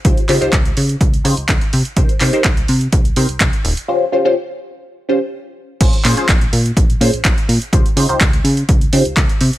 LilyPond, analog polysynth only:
\new Staff \with { instrumentName = "Analog polysynth" } { \time 4/4 \key des \lydian \tempo 4 = 125 <ees' f' g' c''>16 r16 <ees' f' g' c''>16 <ees' f' g' c''>16 r4. <ees' f' g' c''>16 r4 r16 | <ees' g' bes' c''>16 r16 <ees' g' bes' c''>16 <ees' g' bes' c''>16 r4. <ees' g' bes' c''>16 r4 r16 | <des' f' g' c''>16 r16 <des' f' g' c''>16 <des' f' g' c''>16 r4. <des' f' g' c''>16 r4 r16 | <des' f' aes' c''>16 r16 <des' f' aes' c''>16 <des' f' aes' c''>16 r4. <des' f' aes' c''>16 r4 r16 |
<ees' f' g' c''>16 r16 <ees' f' g' c''>16 <ees' f' g' c''>16 r4. <ees' f' g' c''>16 r4 r16 | }